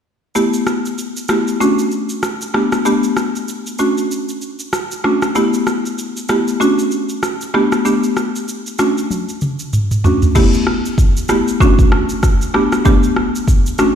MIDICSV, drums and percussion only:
0, 0, Header, 1, 2, 480
1, 0, Start_track
1, 0, Key_signature, 2, "major"
1, 0, Tempo, 625000
1, 273, Time_signature, 4, 2, 24, 8
1, 10714, End_track
2, 0, Start_track
2, 0, Title_t, "Drums"
2, 273, Note_on_c, 9, 82, 69
2, 350, Note_off_c, 9, 82, 0
2, 411, Note_on_c, 9, 82, 51
2, 488, Note_off_c, 9, 82, 0
2, 512, Note_on_c, 9, 37, 86
2, 513, Note_on_c, 9, 82, 49
2, 589, Note_off_c, 9, 37, 0
2, 590, Note_off_c, 9, 82, 0
2, 658, Note_on_c, 9, 82, 49
2, 735, Note_off_c, 9, 82, 0
2, 756, Note_on_c, 9, 82, 69
2, 833, Note_off_c, 9, 82, 0
2, 896, Note_on_c, 9, 82, 57
2, 973, Note_off_c, 9, 82, 0
2, 987, Note_on_c, 9, 82, 63
2, 991, Note_on_c, 9, 37, 96
2, 1064, Note_off_c, 9, 82, 0
2, 1068, Note_off_c, 9, 37, 0
2, 1135, Note_on_c, 9, 82, 52
2, 1211, Note_off_c, 9, 82, 0
2, 1238, Note_on_c, 9, 82, 63
2, 1315, Note_off_c, 9, 82, 0
2, 1373, Note_on_c, 9, 82, 52
2, 1450, Note_off_c, 9, 82, 0
2, 1470, Note_on_c, 9, 82, 42
2, 1546, Note_off_c, 9, 82, 0
2, 1607, Note_on_c, 9, 82, 50
2, 1684, Note_off_c, 9, 82, 0
2, 1711, Note_on_c, 9, 37, 91
2, 1713, Note_on_c, 9, 82, 68
2, 1788, Note_off_c, 9, 37, 0
2, 1790, Note_off_c, 9, 82, 0
2, 1854, Note_on_c, 9, 82, 57
2, 1931, Note_off_c, 9, 82, 0
2, 1953, Note_on_c, 9, 37, 91
2, 2030, Note_off_c, 9, 37, 0
2, 2091, Note_on_c, 9, 82, 44
2, 2092, Note_on_c, 9, 37, 93
2, 2168, Note_off_c, 9, 82, 0
2, 2169, Note_off_c, 9, 37, 0
2, 2193, Note_on_c, 9, 82, 71
2, 2270, Note_off_c, 9, 82, 0
2, 2330, Note_on_c, 9, 82, 51
2, 2407, Note_off_c, 9, 82, 0
2, 2431, Note_on_c, 9, 37, 84
2, 2433, Note_on_c, 9, 82, 46
2, 2508, Note_off_c, 9, 37, 0
2, 2510, Note_off_c, 9, 82, 0
2, 2578, Note_on_c, 9, 82, 50
2, 2655, Note_off_c, 9, 82, 0
2, 2676, Note_on_c, 9, 82, 72
2, 2753, Note_off_c, 9, 82, 0
2, 2816, Note_on_c, 9, 82, 59
2, 2893, Note_off_c, 9, 82, 0
2, 2909, Note_on_c, 9, 82, 65
2, 2986, Note_off_c, 9, 82, 0
2, 3055, Note_on_c, 9, 82, 51
2, 3132, Note_off_c, 9, 82, 0
2, 3159, Note_on_c, 9, 82, 62
2, 3236, Note_off_c, 9, 82, 0
2, 3295, Note_on_c, 9, 82, 50
2, 3371, Note_off_c, 9, 82, 0
2, 3391, Note_on_c, 9, 82, 42
2, 3468, Note_off_c, 9, 82, 0
2, 3528, Note_on_c, 9, 82, 53
2, 3604, Note_off_c, 9, 82, 0
2, 3631, Note_on_c, 9, 37, 96
2, 3634, Note_on_c, 9, 82, 69
2, 3708, Note_off_c, 9, 37, 0
2, 3711, Note_off_c, 9, 82, 0
2, 3774, Note_on_c, 9, 82, 60
2, 3851, Note_off_c, 9, 82, 0
2, 3873, Note_on_c, 9, 37, 89
2, 3950, Note_off_c, 9, 37, 0
2, 4011, Note_on_c, 9, 82, 43
2, 4012, Note_on_c, 9, 37, 99
2, 4088, Note_off_c, 9, 82, 0
2, 4089, Note_off_c, 9, 37, 0
2, 4113, Note_on_c, 9, 82, 72
2, 4189, Note_off_c, 9, 82, 0
2, 4252, Note_on_c, 9, 82, 47
2, 4328, Note_off_c, 9, 82, 0
2, 4353, Note_on_c, 9, 37, 85
2, 4354, Note_on_c, 9, 82, 48
2, 4429, Note_off_c, 9, 37, 0
2, 4431, Note_off_c, 9, 82, 0
2, 4498, Note_on_c, 9, 82, 51
2, 4575, Note_off_c, 9, 82, 0
2, 4597, Note_on_c, 9, 82, 69
2, 4674, Note_off_c, 9, 82, 0
2, 4737, Note_on_c, 9, 82, 57
2, 4814, Note_off_c, 9, 82, 0
2, 4829, Note_on_c, 9, 82, 66
2, 4833, Note_on_c, 9, 37, 100
2, 4906, Note_off_c, 9, 82, 0
2, 4910, Note_off_c, 9, 37, 0
2, 4975, Note_on_c, 9, 82, 52
2, 5052, Note_off_c, 9, 82, 0
2, 5079, Note_on_c, 9, 82, 65
2, 5156, Note_off_c, 9, 82, 0
2, 5214, Note_on_c, 9, 82, 50
2, 5291, Note_off_c, 9, 82, 0
2, 5309, Note_on_c, 9, 82, 42
2, 5386, Note_off_c, 9, 82, 0
2, 5447, Note_on_c, 9, 82, 51
2, 5524, Note_off_c, 9, 82, 0
2, 5551, Note_on_c, 9, 37, 95
2, 5553, Note_on_c, 9, 82, 70
2, 5627, Note_off_c, 9, 37, 0
2, 5630, Note_off_c, 9, 82, 0
2, 5694, Note_on_c, 9, 82, 59
2, 5770, Note_off_c, 9, 82, 0
2, 5792, Note_on_c, 9, 37, 90
2, 5869, Note_off_c, 9, 37, 0
2, 5930, Note_on_c, 9, 82, 44
2, 5931, Note_on_c, 9, 37, 94
2, 6007, Note_off_c, 9, 82, 0
2, 6008, Note_off_c, 9, 37, 0
2, 6032, Note_on_c, 9, 82, 70
2, 6109, Note_off_c, 9, 82, 0
2, 6171, Note_on_c, 9, 82, 47
2, 6248, Note_off_c, 9, 82, 0
2, 6272, Note_on_c, 9, 37, 80
2, 6274, Note_on_c, 9, 82, 49
2, 6349, Note_off_c, 9, 37, 0
2, 6350, Note_off_c, 9, 82, 0
2, 6418, Note_on_c, 9, 82, 50
2, 6495, Note_off_c, 9, 82, 0
2, 6516, Note_on_c, 9, 82, 68
2, 6593, Note_off_c, 9, 82, 0
2, 6655, Note_on_c, 9, 82, 58
2, 6732, Note_off_c, 9, 82, 0
2, 6748, Note_on_c, 9, 82, 66
2, 6752, Note_on_c, 9, 37, 94
2, 6825, Note_off_c, 9, 82, 0
2, 6829, Note_off_c, 9, 37, 0
2, 6896, Note_on_c, 9, 82, 54
2, 6972, Note_off_c, 9, 82, 0
2, 6993, Note_on_c, 9, 48, 54
2, 6999, Note_on_c, 9, 82, 64
2, 7070, Note_off_c, 9, 48, 0
2, 7076, Note_off_c, 9, 82, 0
2, 7134, Note_on_c, 9, 82, 50
2, 7211, Note_off_c, 9, 82, 0
2, 7230, Note_on_c, 9, 82, 43
2, 7234, Note_on_c, 9, 47, 65
2, 7307, Note_off_c, 9, 82, 0
2, 7311, Note_off_c, 9, 47, 0
2, 7367, Note_on_c, 9, 82, 53
2, 7444, Note_off_c, 9, 82, 0
2, 7474, Note_on_c, 9, 45, 74
2, 7475, Note_on_c, 9, 82, 70
2, 7551, Note_off_c, 9, 45, 0
2, 7552, Note_off_c, 9, 82, 0
2, 7613, Note_on_c, 9, 45, 71
2, 7615, Note_on_c, 9, 82, 59
2, 7689, Note_off_c, 9, 45, 0
2, 7692, Note_off_c, 9, 82, 0
2, 7713, Note_on_c, 9, 43, 91
2, 7717, Note_on_c, 9, 82, 52
2, 7790, Note_off_c, 9, 43, 0
2, 7794, Note_off_c, 9, 82, 0
2, 7851, Note_on_c, 9, 82, 42
2, 7852, Note_on_c, 9, 43, 78
2, 7928, Note_off_c, 9, 82, 0
2, 7929, Note_off_c, 9, 43, 0
2, 7953, Note_on_c, 9, 36, 104
2, 7953, Note_on_c, 9, 49, 87
2, 7953, Note_on_c, 9, 82, 74
2, 8030, Note_off_c, 9, 36, 0
2, 8030, Note_off_c, 9, 49, 0
2, 8030, Note_off_c, 9, 82, 0
2, 8091, Note_on_c, 9, 82, 50
2, 8168, Note_off_c, 9, 82, 0
2, 8192, Note_on_c, 9, 37, 81
2, 8269, Note_off_c, 9, 37, 0
2, 8339, Note_on_c, 9, 82, 54
2, 8416, Note_off_c, 9, 82, 0
2, 8431, Note_on_c, 9, 36, 82
2, 8437, Note_on_c, 9, 82, 69
2, 8508, Note_off_c, 9, 36, 0
2, 8514, Note_off_c, 9, 82, 0
2, 8577, Note_on_c, 9, 82, 59
2, 8654, Note_off_c, 9, 82, 0
2, 8668, Note_on_c, 9, 82, 65
2, 8672, Note_on_c, 9, 37, 97
2, 8745, Note_off_c, 9, 82, 0
2, 8749, Note_off_c, 9, 37, 0
2, 8816, Note_on_c, 9, 82, 52
2, 8893, Note_off_c, 9, 82, 0
2, 8912, Note_on_c, 9, 36, 112
2, 8921, Note_on_c, 9, 82, 63
2, 8989, Note_off_c, 9, 36, 0
2, 8997, Note_off_c, 9, 82, 0
2, 9052, Note_on_c, 9, 36, 92
2, 9055, Note_on_c, 9, 82, 52
2, 9129, Note_off_c, 9, 36, 0
2, 9132, Note_off_c, 9, 82, 0
2, 9154, Note_on_c, 9, 37, 101
2, 9231, Note_off_c, 9, 37, 0
2, 9287, Note_on_c, 9, 82, 55
2, 9364, Note_off_c, 9, 82, 0
2, 9392, Note_on_c, 9, 37, 92
2, 9394, Note_on_c, 9, 36, 90
2, 9394, Note_on_c, 9, 82, 71
2, 9468, Note_off_c, 9, 37, 0
2, 9471, Note_off_c, 9, 36, 0
2, 9471, Note_off_c, 9, 82, 0
2, 9535, Note_on_c, 9, 82, 60
2, 9612, Note_off_c, 9, 82, 0
2, 9633, Note_on_c, 9, 37, 95
2, 9710, Note_off_c, 9, 37, 0
2, 9772, Note_on_c, 9, 37, 95
2, 9772, Note_on_c, 9, 82, 45
2, 9848, Note_off_c, 9, 82, 0
2, 9849, Note_off_c, 9, 37, 0
2, 9873, Note_on_c, 9, 36, 105
2, 9873, Note_on_c, 9, 82, 70
2, 9950, Note_off_c, 9, 36, 0
2, 9950, Note_off_c, 9, 82, 0
2, 10011, Note_on_c, 9, 82, 52
2, 10088, Note_off_c, 9, 82, 0
2, 10110, Note_on_c, 9, 37, 84
2, 10187, Note_off_c, 9, 37, 0
2, 10256, Note_on_c, 9, 82, 52
2, 10333, Note_off_c, 9, 82, 0
2, 10350, Note_on_c, 9, 36, 82
2, 10354, Note_on_c, 9, 82, 73
2, 10426, Note_off_c, 9, 36, 0
2, 10431, Note_off_c, 9, 82, 0
2, 10495, Note_on_c, 9, 82, 59
2, 10571, Note_off_c, 9, 82, 0
2, 10587, Note_on_c, 9, 82, 68
2, 10590, Note_on_c, 9, 37, 99
2, 10663, Note_off_c, 9, 82, 0
2, 10667, Note_off_c, 9, 37, 0
2, 10714, End_track
0, 0, End_of_file